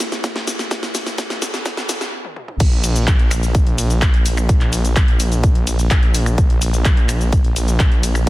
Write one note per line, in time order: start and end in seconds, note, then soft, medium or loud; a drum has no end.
0.00 snare loud
0.00 open hi-hat loud
0.00 shaker medium
0.12 snare medium
0.12 closed hi-hat soft
0.12 shaker soft
0.24 kick loud
0.24 snare medium
0.24 closed hi-hat medium
0.24 shaker soft
0.36 snare medium
0.36 closed hi-hat soft
0.47 snare loud
0.47 open hi-hat loud
0.47 shaker medium
0.59 snare medium
0.59 closed hi-hat soft
0.59 shaker soft
0.71 kick loud
0.71 snare loud
0.71 closed hi-hat loud
0.71 shaker soft
0.83 snare medium
0.83 closed hi-hat soft
0.83 shaker soft
0.95 snare loud
0.95 open hi-hat loud
0.95 shaker medium
1.06 snare medium
1.06 closed hi-hat soft
1.06 shaker soft
1.18 kick loud
1.18 snare loud
1.18 closed hi-hat loud
1.18 shaker soft
1.30 snare medium
1.30 closed hi-hat soft
1.30 shaker soft
1.42 snare loud
1.42 open hi-hat loud
1.42 shaker medium
1.54 snare medium
1.54 closed hi-hat soft
1.54 shaker soft
1.66 kick loud
1.66 snare loud
1.66 closed hi-hat medium
1.66 shaker soft
1.77 snare medium
1.77 closed hi-hat soft
1.77 shaker soft
1.89 snare loud
1.89 open hi-hat loud
1.89 shaker medium
2.01 snare medium
2.01 closed hi-hat soft
2.01 shaker soft
2.25 high tom soft
2.36 mid tom medium
2.48 mid tom medium
2.60 6.36 A#1 medium
2.60 kick loud
2.60 closed hi-hat loud
2.60 crash loud
2.60 shaker soft
2.72 closed hi-hat soft
2.84 open hi-hat loud
2.84 ride medium
2.84 shaker medium
2.96 closed hi-hat soft
2.96 shaker soft
3.07 kick loud
3.07 clap loud
3.07 closed hi-hat medium
3.07 shaker soft
3.19 closed hi-hat soft
3.31 finger snap medium
3.31 clap soft
3.31 open hi-hat loud
3.31 ride medium
3.31 shaker medium
3.43 closed hi-hat soft
3.43 shaker soft
3.55 kick loud
3.55 closed hi-hat medium
3.55 shaker soft
3.67 closed hi-hat soft
3.78 open hi-hat loud
3.78 ride medium
3.78 shaker medium
3.90 closed hi-hat soft
3.90 shaker soft
4.02 kick loud
4.02 clap loud
4.02 closed hi-hat medium
4.02 shaker soft
4.14 closed hi-hat soft
4.26 open hi-hat loud
4.26 ride medium
4.26 shaker medium
4.37 finger snap medium
4.37 closed hi-hat soft
4.37 shaker soft
4.49 kick loud
4.49 closed hi-hat loud
4.49 shaker soft
4.61 clap soft
4.61 closed hi-hat soft
4.73 open hi-hat loud
4.73 ride medium
4.73 shaker medium
4.85 closed hi-hat soft
4.85 shaker soft
4.96 kick loud
4.96 clap loud
4.96 closed hi-hat medium
4.96 shaker soft
5.08 closed hi-hat soft
5.20 open hi-hat loud
5.20 ride medium
5.20 shaker medium
5.32 closed hi-hat soft
5.32 shaker soft
5.44 kick loud
5.44 closed hi-hat medium
5.44 shaker soft
5.55 closed hi-hat soft
5.67 open hi-hat loud
5.67 ride medium
5.67 shaker medium
5.79 closed hi-hat soft
5.79 shaker soft
5.91 kick loud
5.91 clap loud
5.91 closed hi-hat medium
5.91 shaker soft
6.03 closed hi-hat soft
6.15 open hi-hat loud
6.15 ride medium
6.15 shaker medium
6.26 finger snap medium
6.26 closed hi-hat soft
6.26 shaker soft
6.38 8.29 A#1 medium
6.38 kick loud
6.38 closed hi-hat medium
6.38 shaker soft
6.50 closed hi-hat soft
6.62 open hi-hat loud
6.62 ride medium
6.62 shaker medium
6.74 closed hi-hat soft
6.74 shaker soft
6.85 kick loud
6.85 clap loud
6.85 closed hi-hat medium
6.85 shaker soft
6.97 closed hi-hat soft
7.09 finger snap medium
7.09 clap soft
7.09 open hi-hat loud
7.09 ride medium
7.09 shaker medium
7.21 closed hi-hat soft
7.21 shaker soft
7.33 kick loud
7.33 closed hi-hat medium
7.33 shaker soft
7.44 closed hi-hat soft
7.56 open hi-hat loud
7.56 ride medium
7.56 shaker medium
7.68 closed hi-hat soft
7.68 shaker soft
7.80 kick loud
7.80 clap loud
7.80 closed hi-hat medium
7.80 shaker soft
7.92 closed hi-hat soft
8.03 open hi-hat loud
8.03 ride medium
8.03 shaker medium
8.15 finger snap medium
8.15 closed hi-hat soft
8.15 shaker soft